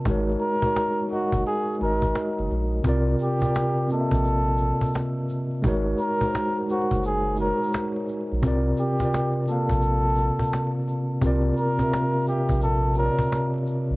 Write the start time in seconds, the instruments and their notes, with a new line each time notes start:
0.05 sub bass G#1, tine electric piano G#3 D#4 F#4, cajon bass
0.09 tine electric piano A#4 C#5
0.41 muted trumpet A#4, cajon slap
0.61 tine electric piano G#3 D#4 F#4, cajon bass
0.65 tine electric piano A#4 C#5
0.77 cajon slap
1.08 tine electric piano G#3 D#4 F#4
1.12 muted trumpet F#4, tine electric piano A#4 D#5, cajon slap
1.32 sub bass F#1, cajon bass
1.46 muted trumpet G#4, cajon slap
1.79 sub bass G#1, tine electric piano G#3 D#4 F#4, muted trumpet A#4, cajon slap
1.84 tine electric piano A#4 D#5
2.02 sub bass G#1, cajon bass
2.16 cajon slap
2.39 sub bass F#1, cajon slap
2.51 sub bass A#1, cajon slap
2.76 cajon slap
2.83 sub bass C2, tine electric piano C3 C4 F4, cajon bass, shaker
2.87 tine electric piano A#4 D5
3.19 muted trumpet G4, cajon slap, shaker
3.39 tine electric piano C3 C4 F4, cajon bass, shaker
3.44 tine electric piano A#4 D5
3.55 cajon slap, shaker
3.88 tine electric piano C3 C4 F4, cajon slap, shaker
3.92 tine electric piano A#3 D#5, muted trumpet A4
4.00 tine electric piano E5
4.12 sub bass A#1, cajon bass, shaker
4.24 cajon slap, shaker
4.57 shaker
4.61 cajon slap
4.81 cajon bass, shaker
4.94 cajon slap, shaker
5.28 cajon slap, shaker
5.54 cajon slap
5.62 sub bass G#1, tine electric piano G#3 D#4 F#4, cajon bass, shaker
5.67 tine electric piano A#4 C#5
5.98 muted trumpet A#4, cajon slap, shaker
6.20 tine electric piano G#3 D#4, cajon bass, shaker
6.24 tine electric piano F#4 A#4 C5
6.34 cajon slap, shaker
6.66 tine electric piano G#3 D#4 F#4, muted trumpet F#4, shaker
6.71 tine electric piano A#4 C5, cajon slap
6.91 sub bass F#1, cajon bass, shaker
7.03 muted trumpet G#4, cajon slap, shaker
7.36 tine electric piano G#3 D#4 F#4, shaker
7.40 muted trumpet A#4, tine electric piano A#4 C#5, cajon slap
7.63 shaker
7.73 cajon slap, shaker
8.08 cajon slap, shaker
8.32 sub bass A#1, cajon slap
8.42 sub bass C2, tine electric piano C3 C4 F4, cajon bass, shaker
8.46 tine electric piano A#4 D5
8.77 muted trumpet G4, cajon slap, shaker
8.99 tine electric piano C3 C4 F4, cajon bass, shaker
9.03 tine electric piano A#4 D5
9.13 cajon slap, shaker
9.46 tine electric piano C3 C4 F4, muted trumpet A4, cajon slap, shaker
9.50 tine electric piano A#3 F5
9.70 sub bass A#1, cajon bass, shaker
9.82 cajon slap, shaker
10.16 cajon slap, shaker
10.39 cajon bass, shaker
10.53 cajon slap, shaker
10.88 cajon slap, shaker
11.12 cajon slap
11.21 sub bass C2, tine electric piano C3 C4 F4, cajon bass, shaker
11.25 tine electric piano A#4 D5
11.57 muted trumpet A#4, cajon slap, shaker
11.78 tine electric piano C3 C4 F4, cajon bass, shaker
11.82 tine electric piano A#4 E5
11.92 cajon slap, shaker
12.25 tine electric piano C3 C4 F4, muted trumpet G4, cajon slap, shaker
12.30 tine electric piano A#4 E5
12.49 sub bass A#1, cajon bass, shaker
12.61 muted trumpet A4, cajon slap, shaker
12.93 tine electric piano C3 C4 F4, shaker
12.97 tine electric piano A#4 C#5, muted trumpet A#4, cajon slap
13.05 tine electric piano D5
13.19 cajon bass, shaker
13.32 cajon slap, shaker
13.56 cajon slap
13.66 shaker
13.90 sub bass A#1, cajon slap